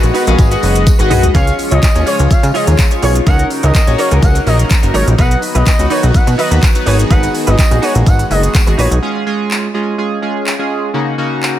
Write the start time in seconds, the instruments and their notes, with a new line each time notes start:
Already playing: supersaw synth D#3 G#3 B3 F#4, analog polysynth F#4 G#4 B4 D#5 F#5
0.03 analog synth bass A#1, muted clean electric guitar stroke, closed hi-hat, shaker
0.14 clean electric guitar D#4 F#4 B4, open hi-hat, tambourine, shaker
0.27 analog synth bass A#1, analog polysynth F#4 G#4 B4 D#5 F5, muted clean electric guitar stroke, closed hi-hat, shaker
0.38 analog synth bass G#1, muted clean electric guitar stroke, kick, tambourine, shaker
0.51 analog polysynth F#4 G#4 B4 D#5 F#5, muted clean electric guitar stroke, closed hi-hat, tambourine, shaker
0.63 analog synth bass F#1, open hi-hat, tambourine, shaker
0.75 muted clean electric guitar stroke, closed hi-hat, shaker
0.86 kick, high tom, tambourine, shaker
0.99 analog synth bass G#1, analog polysynth F#4 G#4 B4 D#5 F#5, muted clean electric guitar stroke, closed hi-hat, shaker
1.10 analog synth bass B1, clean electric guitar D#4 F#4 B4, mid tom, open hi-hat, tambourine, shaker
1.23 muted clean electric guitar stroke, closed hi-hat, floor tom, shaker
1.34 analog synth bass C#2, supersaw synth C#3 F3 G#3 F4, analog polysynth C#4 F4 G#4 C#5, clean electric guitar F4 G#4 C#5, analog synth lead F5, kick, tambourine, shaker
1.47 closed hi-hat, tambourine, shaker
1.58 muted clean electric guitar stroke, open hi-hat, tambourine, shaker
1.71 analog synth bass C#2, clean electric guitar F4 G#4 C#5, analog synth lead D#5, closed hi-hat, shaker
1.83 analog synth lead D#5, kick, clap, tambourine, shaker
1.95 analog synth bass D#2, analog polysynth C#4 F4 G#4 C#5, muted clean electric guitar stroke, closed hi-hat, shaker
2.06 analog polysynth C#4 F4 G#4 C#5, clean electric guitar F4 G#4 C#5, analog synth lead C#5, open hi-hat, tambourine, shaker
2.19 analog synth bass C#2, muted clean electric guitar stroke, closed hi-hat, shaker
2.31 analog synth bass C#3, analog synth lead F5, kick, tambourine, shaker
2.43 analog synth bass C#3, muted clean electric guitar stroke, closed hi-hat, tambourine, shaker
2.54 analog polysynth C#4 F4 G#4 C#5, clean electric guitar F4 G#4 C#5, analog synth lead D#5, open hi-hat, tambourine, shaker
2.67 analog synth bass D#2, muted clean electric guitar stroke, closed hi-hat, tambourine, shaker
2.78 kick, clap, tambourine, shaker
2.91 analog polysynth C#4 F4 G#4 C#5, muted clean electric guitar stroke, closed hi-hat, shaker
3.02 analog synth bass B1, clean electric guitar F4 G#4 C#5, analog synth lead C#5, open hi-hat, tambourine, shaker
3.15 muted clean electric guitar stroke, closed hi-hat, shaker
3.26 analog synth bass C#2, supersaw synth F#3 A#3 D#4, analog polysynth C#4 D#4 F#4 A#4, clean electric guitar D#4 A#4 C#5, analog synth lead F#5, kick, tambourine, shaker
3.39 closed hi-hat, shaker
3.50 muted clean electric guitar stroke, open hi-hat, tambourine, shaker
3.63 analog synth bass C#2, clean electric guitar D#4 A#4 C#5, analog synth lead D#5, closed hi-hat, tambourine, shaker
3.75 analog synth lead D#5, kick, clap, tambourine, shaker
3.87 analog synth bass A#1, analog polysynth C#4 D#4 F#4 C#5, muted clean electric guitar stroke, closed hi-hat, shaker
3.98 analog polysynth C#4 D#4 F#4 A#4, clean electric guitar D#4 A#4 C#5, analog synth lead C#5, open hi-hat, tambourine, shaker
4.11 analog synth bass C#2, muted clean electric guitar stroke, closed hi-hat, shaker
4.22 analog synth bass C#2, analog synth lead F#5, muted clean electric guitar stroke, kick, tambourine, shaker
4.35 muted clean electric guitar stroke, closed hi-hat, tambourine, shaker
4.46 analog synth bass A#1, analog polysynth C#4 D#4 F#4 A#4, analog synth lead D#5, open hi-hat, tambourine, shaker
4.59 muted clean electric guitar stroke, closed hi-hat, tambourine, shaker
4.70 kick, clap, tambourine, shaker
4.83 analog synth bass F#1, analog polysynth C#4 D#4 F#4 A#4, muted clean electric guitar stroke, closed hi-hat, shaker
4.94 analog synth bass G#1, clean electric guitar D#4 A#4 C#5, analog synth lead C#5, open hi-hat, tambourine, shaker
5.07 analog synth bass A#1, muted clean electric guitar stroke, closed hi-hat, shaker
5.18 analog synth bass B1, supersaw synth D#3 B3 F#4, analog polysynth B3 D#4 F#4 B4, clean electric guitar D#4 F#4 B4, analog synth lead F#5, kick, tambourine, shaker
5.31 closed hi-hat, shaker
5.42 muted clean electric guitar stroke, open hi-hat, tambourine, shaker
5.55 analog synth bass B1, clean electric guitar D#4 F#4 B4, analog synth lead D#5, closed hi-hat, tambourine, shaker
5.66 analog synth lead D#5, kick, clap, tambourine, shaker
5.79 analog synth bass C#2, analog polysynth B3 D#4 F#4 B4, muted clean electric guitar stroke, closed hi-hat, shaker
5.90 analog polysynth B3 D#4 F#4 B4, clean electric guitar D#4 F#4 B4, analog synth lead C#5, open hi-hat, tambourine, shaker
6.03 analog synth bass B1, muted clean electric guitar stroke, closed hi-hat, shaker
6.14 analog synth bass B2, analog synth lead F#5, muted clean electric guitar stroke, kick, tambourine, shaker
6.27 analog synth bass B2, muted clean electric guitar stroke, closed hi-hat, tambourine, shaker
6.38 analog polysynth B3 D#4 F#4 B4, clean electric guitar D#4 F#4 B4, analog synth lead D#5, open hi-hat, tambourine, shaker
6.51 analog synth bass D#2, clean electric guitar D#4 F#4 B4, closed hi-hat, shaker
6.63 kick, clap, tambourine, shaker
6.75 analog polysynth B3 D#4 F#4 B4, muted clean electric guitar stroke, closed hi-hat, shaker
6.86 analog synth bass G#1, supersaw synth G#3, analog polysynth B3 D#4 F#4 G#4, clean electric guitar D#4 F#4 B4, analog synth lead C#5, open hi-hat, tambourine, shaker
6.99 muted clean electric guitar stroke, closed hi-hat, shaker
7.10 analog synth bass G#1, clean electric guitar D#4 F#4 B4, analog synth lead F#5, kick, tambourine, shaker
7.23 closed hi-hat, tambourine, shaker
7.34 muted clean electric guitar stroke, open hi-hat, tambourine, shaker
7.47 analog synth bass G#1, clean electric guitar D#4 F#4 B4, analog synth lead D#5, closed hi-hat, shaker
7.59 analog synth lead D#5, kick, clap, tambourine, shaker
7.71 analog synth bass A#1, analog polysynth B3 D#4 F#4 G#4, muted clean electric guitar stroke, closed hi-hat, shaker
7.82 analog polysynth B3 D#4 F#4 G#4, clean electric guitar D#4 F#4 B4, analog synth lead C#5, open hi-hat, tambourine, shaker
7.95 analog synth bass A#1, muted clean electric guitar stroke, closed hi-hat, shaker
8.06 analog synth bass G#1, analog synth lead F#5, muted clean electric guitar stroke, kick, tambourine, shaker
8.19 muted clean electric guitar stroke, closed hi-hat, tambourine, shaker
8.30 analog synth bass F#1, analog polysynth B3 D#4 F#4 G#4, analog synth lead D#5, open hi-hat, tambourine, shaker
8.43 muted clean electric guitar stroke, closed hi-hat, tambourine, shaker
8.54 kick, clap, tambourine, shaker
8.67 analog synth bass G#1, analog polysynth B3 D#4 F#4 G#4, muted clean electric guitar stroke, closed hi-hat, shaker
8.78 analog synth bass A#1, clean electric guitar D#4 F#4 B4, analog synth lead C#5, open hi-hat, tambourine, shaker
8.91 analog synth bass B1, muted clean electric guitar stroke, closed hi-hat, shaker
9.02 analog polysynth G#3 C#4 F4 G#4
9.26 analog polysynth G#3 C#4 F4 G#4
9.51 clap
9.74 analog polysynth G#3 C#4 F4 G#4
9.98 analog polysynth G#3 C#4 F4 G#4
10.22 analog polysynth G#3 C#4 F4 G#4
10.47 clap
10.59 analog polysynth G#3 C#4 F4 G#4
10.94 analog polysynth C#3 A#3 C#4 D#4 F#4
11.18 analog polysynth C#3 A#3 C#4 D#4 F#4
11.43 clap